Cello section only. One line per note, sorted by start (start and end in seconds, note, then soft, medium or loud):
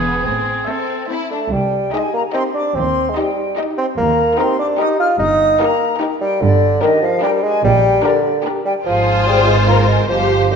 0.00 0.17 E2 medium
0.26 0.59 A2 medium
1.52 1.85 C2 medium
2.77 3.09 D#2 medium
3.97 4.30 D#2 medium
5.20 5.52 G2 medium
6.42 6.74 G2 medium
7.64 7.96 A#2 medium
8.87 10.06 G#2 medium
10.10 10.56 G2 medium